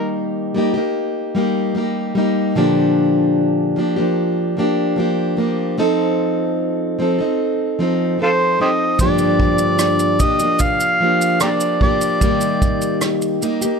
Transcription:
Already playing: steel-string acoustic guitar D#3 G3 A#3 D#4 G4, harmonica A#4
0.54 steel-string acoustic guitar G3 A#3 D#4 G4
0.74 steel-string acoustic guitar A#3 D#4 G4
1.35 steel-string acoustic guitar G3 A#3 D#4 G4
1.75 steel-string acoustic guitar G3 A#3 D#4 G4
2.15 steel-string acoustic guitar G3 A#3 D#4 G4
2.55 steel-string acoustic guitar A#2 D3 F3 A#3 D4 G4
3.76 steel-string acoustic guitar F3 A#3 D4 G4
3.96 steel-string acoustic guitar F3 A#3 D4 G4
4.57 steel-string acoustic guitar F3 A#3 D4 G4
4.96 steel-string acoustic guitar F3 A#3 D4 G4
5.37 steel-string acoustic guitar F3 A#3 D4 G4
5.78 steel-string acoustic guitar F3 C4 D#4 A4
6.99 steel-string acoustic guitar F3 C4 D#4 A4
7.18 steel-string acoustic guitar C4 D#4 A4
7.79 steel-string acoustic guitar F3 C4 D#4 A4
8.18 steel-string acoustic guitar F3 C4 D#4 A4
8.23 harmonica F4 A4 C5
8.59 steel-string acoustic guitar F3 C4 D#4 A4, harmonica G4 C5 D#5
8.99 steel-string acoustic guitar G2 D3 F3 A#3 D4 G4, harmonica D5, kick, shaker
9.18 shaker
9.40 kick
9.58 shaker
9.79 cross-stick, shaker
9.99 shaker
10.19 steel-string acoustic guitar F3 A#3 D4 G4, harmonica D#5, kick, shaker
10.39 steel-string acoustic guitar A#3 D4 G4, shaker
10.44 steel-string acoustic guitar F3
10.59 harmonica F5, kick, shaker
10.80 shaker
11.00 steel-string acoustic guitar F3 A#3 D4 G4
11.21 shaker
11.40 steel-string acoustic guitar F3 A#3 D4 G4, harmonica G4 A#4 D5, cross-stick, shaker
11.60 shaker
11.81 steel-string acoustic guitar F3 A#3 D4 G4, harmonica D5, kick
12.01 shaker
12.21 steel-string acoustic guitar D#3 G3 A#3 D#4 G4, kick, shaker
12.41 shaker
12.62 kick, shaker
12.81 shaker
13.01 cross-stick, shaker
13.22 shaker
13.41 steel-string acoustic guitar G3 A#3 D#4 G4, shaker
13.61 steel-string acoustic guitar A#3 D#4 G4, shaker

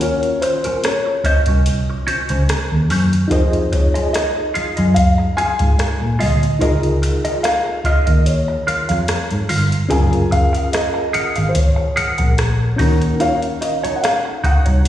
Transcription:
Already playing: fingered electric bass D#2, reed electric piano C#4 F4 F#4 A#4
0.01 clean electric guitar C#4 F#4 A#4, grand piano C#5, closed hi-hat
0.23 muted clean electric guitar stroke, closed hi-hat
0.42 grand piano C5, muted clean electric guitar stroke, closed hi-hat
0.64 clean electric guitar C#4 F#4 A#4, muted fingered electric bass stroke, closed hi-hat
0.83 grand piano C#5, muted clean electric guitar stroke, cross-stick, closed hi-hat
1.06 muted clean electric guitar stroke
1.24 clean electric guitar C#4 F#4 C5, grand piano D#5, muted fingered electric bass stroke, kick, closed hi-hat
1.46 fingered electric bass C2, clean electric guitar C#4 F#4 A#4, kick, closed hi-hat
1.66 muted clean electric guitar stroke, closed hi-hat
1.90 muted clean electric guitar stroke
2.07 clean electric guitar C#4 F#4 C5, muted fingered electric bass stroke, closed hi-hat
2.29 fingered electric bass C#2, clean electric guitar C#4 F#4 C5, closed hi-hat
2.49 muted clean electric guitar stroke, cross-stick, closed hi-hat
2.72 fingered electric bass D#2
2.90 fingered electric bass F#2, clean electric guitar C#4 F#4 C5, open hi-hat
3.12 muted clean electric guitar stroke, closed hi-hat
3.28 fingered electric bass F2, reed electric piano D#4 F4 G4, clean electric guitar F4, grand piano C5, kick, closed hi-hat
3.32 clean electric guitar G#4 D#5, reed electric piano D#5
3.37 reed electric piano G#4
3.53 muted clean electric guitar stroke, closed hi-hat
3.72 grand piano C#5, muted clean electric guitar stroke, kick, closed hi-hat
3.94 clean electric guitar F4 G#4 D#5, muted fingered electric bass stroke, closed hi-hat
4.13 grand piano D#5, muted clean electric guitar stroke, cross-stick, closed hi-hat
4.35 muted clean electric guitar stroke
4.54 clean electric guitar F4 G#4 F5, muted fingered electric bass stroke, closed hi-hat
4.76 fingered electric bass F#2, clean electric guitar F4 G#4 D#5, closed hi-hat
4.94 grand piano F5, muted clean electric guitar stroke, kick, closed hi-hat
5.18 muted clean electric guitar stroke
5.37 clean electric guitar F4 G#4 F5, grand piano G#5, muted fingered electric bass stroke, closed hi-hat
5.59 fingered electric bass G#2, clean electric guitar F4 G#4 F5, kick, closed hi-hat
5.78 muted clean electric guitar stroke, cross-stick, closed hi-hat
6.01 fingered electric bass A#2
6.19 fingered electric bass D2, clean electric guitar F4 G#4 F5, grand piano D#5, open hi-hat
6.41 muted clean electric guitar stroke, closed hi-hat
6.59 fingered electric bass C#2, reed electric piano D#4 F4 G#4, clean electric guitar F4 A#4 D#5, kick, closed hi-hat
6.64 reed electric piano A#4
6.83 muted clean electric guitar stroke, closed hi-hat
7.02 muted clean electric guitar stroke, closed hi-hat
7.25 clean electric guitar F4 A#4 D#5, muted fingered electric bass stroke, closed hi-hat
7.43 grand piano F5, muted clean electric guitar stroke, cross-stick, closed hi-hat
7.66 muted clean electric guitar stroke
7.84 clean electric guitar F4 A#4 F5, grand piano D#5, muted fingered electric bass stroke, kick, closed hi-hat
8.06 fingered electric bass D#2, clean electric guitar F4 A#4 D#5, kick, closed hi-hat
8.25 grand piano C#5, muted clean electric guitar stroke, closed hi-hat
8.48 muted clean electric guitar stroke
8.67 clean electric guitar F4 A#4 F5, muted fingered electric bass stroke, closed hi-hat
8.89 fingered electric bass F2, clean electric guitar F4 A#4 F5, cross-stick, closed hi-hat
9.08 muted clean electric guitar stroke, cross-stick, closed hi-hat
9.31 fingered electric bass G#2, closed hi-hat
9.49 fingered electric bass G1, clean electric guitar F4 A#4 F5, open hi-hat
9.71 muted clean electric guitar stroke, closed hi-hat
9.89 fingered electric bass F#1, reed electric piano C#4 F4 G#4, clean electric guitar G#4 A#4 F5, grand piano G#5, kick, closed hi-hat
9.93 reed electric piano A#4
10.12 muted clean electric guitar stroke, closed hi-hat
10.31 grand piano F5, muted clean electric guitar stroke, kick, closed hi-hat
10.53 clean electric guitar G#4 A#4 F5, muted fingered electric bass stroke, closed hi-hat
10.73 grand piano D#5, muted clean electric guitar stroke, cross-stick, closed hi-hat
10.94 muted clean electric guitar stroke
11.13 clean electric guitar G#4 A#4 F#5, muted fingered electric bass stroke, closed hi-hat
11.36 fingered electric bass G#1, clean electric guitar G#4 A#4 F5, closed hi-hat
11.49 grand piano C5
11.55 grand piano C#5, muted clean electric guitar stroke, kick, closed hi-hat
11.76 muted clean electric guitar stroke
11.96 clean electric guitar G#4 A#4 F#5, muted fingered electric bass stroke, closed hi-hat
12.18 fingered electric bass A#1, clean electric guitar G#4 A#4 F#5, kick, closed hi-hat
12.38 muted clean electric guitar stroke, cross-stick, closed hi-hat
12.76 fingered electric bass D#2, reed electric piano C#4 D#4 F#4, clean electric guitar D#4 F#4 D#5, kick, open hi-hat
12.81 reed electric piano A#4
13.01 muted clean electric guitar stroke, closed hi-hat
13.20 clean electric guitar D#4 F#4 C#5, grand piano F5, closed hi-hat
13.42 muted clean electric guitar stroke, closed hi-hat
13.61 grand piano D#5, muted clean electric guitar stroke, closed hi-hat
13.83 clean electric guitar D#4 F#4 C#5, muted fingered electric bass stroke, closed hi-hat
13.96 grand piano F#5
14.02 grand piano F5, muted clean electric guitar stroke, cross-stick, closed hi-hat
14.25 muted clean electric guitar stroke
14.44 clean electric guitar D#4 F#4 D#5, grand piano F#5, muted fingered electric bass stroke, kick, closed hi-hat
14.66 fingered electric bass C2, clean electric guitar D#4 F#4 C#5, kick, closed hi-hat
14.85 muted clean electric guitar stroke

